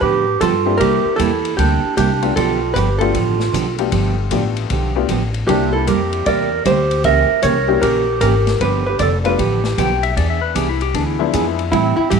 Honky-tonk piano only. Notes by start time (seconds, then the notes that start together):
0.66 A#3 C4 D4 E4 G4
2.22 A3 B3 D4 F4 G4
3.00 A3 B3 D4 F4 G4
3.78 A3 B3 D4 F4 G4
4.31 A3 B3 D4 F4 G4
4.95 A3 B3 D4 F4 G4
5.48 A#3 C4 D4 E4 G4
7.67 G3 A#3 C#4 E4 G4
9.24 G3 A3 B3 D4 F4
11.19 F3 G#3 B3 D4 E4